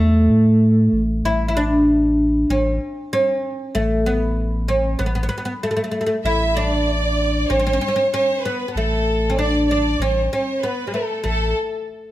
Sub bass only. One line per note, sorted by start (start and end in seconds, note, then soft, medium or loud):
0.00 0.28 E2 loud
0.30 0.89 A2 medium
0.93 1.22 A1 medium
1.24 2.45 A1 medium
2.49 2.79 A1 medium
3.75 4.96 A1 medium
5.00 5.29 A1 medium
6.24 7.45 A1 medium
7.50 7.79 A1 medium
8.75 9.96 A1 medium
9.99 10.29 A1 loud
11.24 11.53 A1 medium